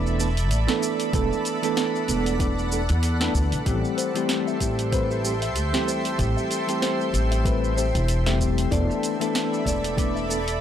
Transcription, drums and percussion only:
0.07 shaker
0.20 shaker
0.37 open hi-hat, shaker
0.51 open hi-hat, shaker
0.68 snare, shaker
0.83 shaker
1.00 open hi-hat, shaker
1.13 kick, open hi-hat, shaker
1.33 shaker
1.45 open hi-hat, shaker
1.63 open hi-hat, shaker
1.77 snare, open hi-hat, shaker
1.96 shaker
2.08 open hi-hat, shaker
2.26 open hi-hat, shaker
2.40 kick, open hi-hat, shaker
2.59 shaker
2.72 shaker
2.89 open hi-hat, shaker
3.03 open hi-hat, shaker
3.21 snare, shaker
3.34 kick, shaker
3.52 open hi-hat, shaker
3.66 kick, open hi-hat, shaker
3.85 shaker
3.98 open hi-hat, shaker
4.16 open hi-hat, shaker
4.29 snare, open hi-hat, shaker
4.48 shaker
4.60 kick, open hi-hat, shaker
4.79 open hi-hat, shaker
4.92 kick, open hi-hat, shaker
5.11 shaker
5.25 shaker
5.42 open hi-hat, shaker
5.56 open hi-hat, shaker
5.74 snare, shaker
5.88 shaker
6.05 open hi-hat, shaker
6.19 kick, open hi-hat, shaker
6.38 shaker
6.51 open hi-hat, shaker
6.69 open hi-hat, shaker
6.82 snare, open hi-hat, shaker
7.01 shaker
7.14 open hi-hat, shaker
7.32 open hi-hat, shaker
7.45 kick, open hi-hat, shaker
7.64 shaker
7.78 shaker
7.95 open hi-hat, shaker
8.08 open hi-hat, shaker
8.26 snare, shaker
8.40 kick, shaker
8.58 open hi-hat, shaker
8.71 kick, open hi-hat, shaker
8.91 shaker
9.03 open hi-hat, shaker
9.21 open hi-hat, shaker
9.35 snare, open hi-hat, shaker
9.54 shaker
9.66 kick, open hi-hat, shaker
9.84 open hi-hat, shaker
9.98 kick, open hi-hat, shaker
10.17 shaker
10.31 shaker
10.48 open hi-hat, shaker

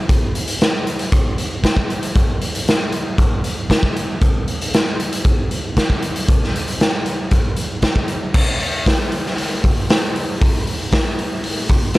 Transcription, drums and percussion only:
0.09 kick, closed hi-hat
0.35 closed hi-hat
0.48 closed hi-hat
0.61 snare, closed hi-hat
0.87 closed hi-hat
0.99 closed hi-hat
1.12 kick, closed hi-hat
1.38 closed hi-hat
1.64 kick, snare, closed hi-hat
1.77 kick
1.90 closed hi-hat
2.03 closed hi-hat
2.16 kick, closed hi-hat
2.41 closed hi-hat
2.55 closed hi-hat
2.68 snare, closed hi-hat
2.92 closed hi-hat
3.18 kick, closed hi-hat
3.44 closed hi-hat
3.70 kick, snare, closed hi-hat
3.83 kick
3.96 closed hi-hat
4.21 kick, closed hi-hat
4.48 closed hi-hat
4.62 closed hi-hat
4.74 snare, closed hi-hat
5.00 closed hi-hat
5.13 closed hi-hat
5.25 kick, closed hi-hat
5.51 closed hi-hat
5.77 kick, snare, closed hi-hat
5.90 kick
6.02 closed hi-hat
6.16 closed hi-hat
6.28 kick, closed hi-hat
6.44 snare
6.56 closed hi-hat
6.68 closed hi-hat
6.80 snare, closed hi-hat
7.06 closed hi-hat
7.31 kick, closed hi-hat
7.56 closed hi-hat
7.82 kick, snare, closed hi-hat
7.96 kick
8.08 closed hi-hat
8.34 kick, crash
8.60 open hi-hat
8.86 kick, snare, open hi-hat
9.12 open hi-hat
9.26 snare
9.38 open hi-hat
9.64 kick, open hi-hat
9.90 snare, open hi-hat
10.16 open hi-hat
10.42 kick, open hi-hat
10.67 open hi-hat
10.92 kick, snare, open hi-hat
11.19 open hi-hat
11.44 open hi-hat
11.69 kick, open hi-hat
11.94 open hi-hat

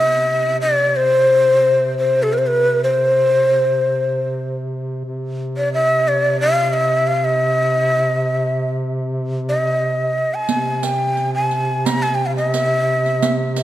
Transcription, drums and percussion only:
10.49 riq
10.83 riq
11.17 riq
11.51 riq
11.86 riq
12.04 riq
12.38 riq
12.54 riq
13.06 riq
13.23 riq
13.56 riq

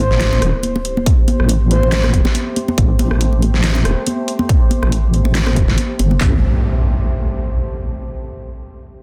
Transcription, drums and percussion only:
0.11 snare
0.21 snare, clap, closed hi-hat
0.33 muted conga, high conga
0.42 cross-stick, closed hi-hat
0.63 closed hi-hat, high conga
0.76 muted conga
0.85 closed hi-hat
0.97 high conga
1.06 kick, closed hi-hat, muted conga
1.28 closed hi-hat, high conga
1.40 cross-stick
1.49 closed hi-hat, muted conga
1.71 closed hi-hat, high conga
1.83 muted conga
1.92 snare, clap, closed hi-hat
2.04 cross-stick, high conga
2.14 kick, closed hi-hat
2.25 snare, muted conga
2.35 closed hi-hat, high conga
2.56 closed hi-hat, muted conga
2.68 high conga
2.78 kick, closed hi-hat
2.99 closed hi-hat, muted conga, high conga
3.11 cross-stick
3.21 closed hi-hat
3.33 muted conga
3.42 closed hi-hat, high conga
3.54 snare
3.64 snare, clap, closed hi-hat
3.75 muted conga, high conga
3.85 cross-stick, closed hi-hat
4.07 closed hi-hat, muted conga, high conga
4.28 closed hi-hat
4.39 high conga
4.49 kick, closed hi-hat, muted conga
4.71 closed hi-hat, high conga
4.83 cross-stick, muted conga
4.92 closed hi-hat
5.14 closed hi-hat, high conga
5.25 muted conga
5.35 snare, clap, closed hi-hat
5.47 cross-stick, high conga
5.56 kick, closed hi-hat, muted conga
5.68 snare
5.78 closed hi-hat, high conga
5.99 closed hi-hat, muted conga
6.11 high conga
6.21 kick, clap

